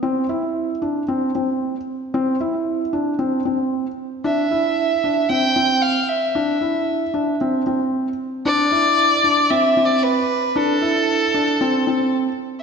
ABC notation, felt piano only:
X:1
M:4/4
L:1/8
Q:1/4=114
K:C
V:1 name="Felt piano"
C E2 D C C2 z | C E2 D C C2 z | D E2 D C C2 z | D E2 D C C2 z |
D E2 D C C2 z | D E2 D C C2 z |]